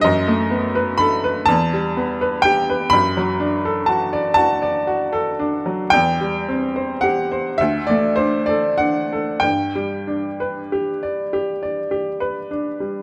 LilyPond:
\new Staff \with { instrumentName = "Upright piano" } { \time 12/8 \key g \major \tempo 4. = 37 << { dis''4 b''8 a''4 g''8 b''4 a''8 a''4. | g''4 fis''8 e''16 d''16 c''16 d''16 fis''8 g''2~ g''8 r8 | } \\ { fis,16 a16 b16 b'16 a'16 b'16 e,16 g16 b16 b'16 g'16 b'16 fis,16 fis16 d'16 a'16 fis'16 d''16 fis'16 d''16 fis'16 a'16 d'16 fis16 | e,16 g16 c'16 c''16 g'16 c''16 d,16 a16 d'16 a'16 d'16 a'16 g,16 g16 d'16 b'16 g'16 d''16 g'16 d''16 g'16 b'16 d'16 g16 | } >> }